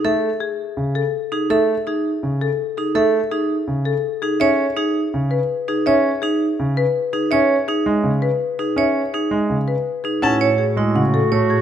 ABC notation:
X:1
M:4/4
L:1/8
Q:1/4=165
K:C#m
V:1 name="Violin"
z8 | z8 | z8 | z8 |
z8 | z8 | z8 | [K:A] a z6 z |]
V:2 name="Marimba"
e z G z2 A z G | e z G z2 A z G | e z G z2 A z G | e z G z2 B z G |
e z G z2 B z G | e z G z2 B z G | e z G z2 B z G | [K:A] f z G z f A z G |]
V:3 name="Clarinet"
z8 | z8 | z8 | z8 |
z8 | z8 | z8 | [K:A] F8 |]
V:4 name="Vibraphone"
A z6 D | A z D z4 D | A z D z4 D | c z D z4 D |
c z D z4 D | c z D z4 D | c z D z4 D | [K:A] E c z E z2 c z |]
V:5 name="Grand piano" clef=bass
A, z3 C, z3 | A, z3 C, z3 | A, z3 C, z3 | C z3 C, z3 |
C z3 C, z3 | C z2 G, C, z3 | C z2 G, C, z3 | [K:A] C z2 G, C, z A, z |]
V:6 name="Double bass" clef=bass
z8 | z8 | z8 | z8 |
z8 | z8 | z8 | [K:A] A,,8 |]